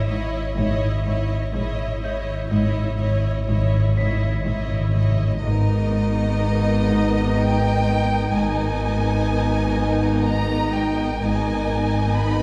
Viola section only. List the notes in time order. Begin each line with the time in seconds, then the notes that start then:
0.08 E4
0.57 E4
1.06 E4
1.53 E4
2.01 E4
2.49 E4
2.99 E4
3.47 E4
3.97 E4
4.44 E4
4.93 E4
5.41 B3 D#4
8.32 B3 D#4
11.21 B3 D#4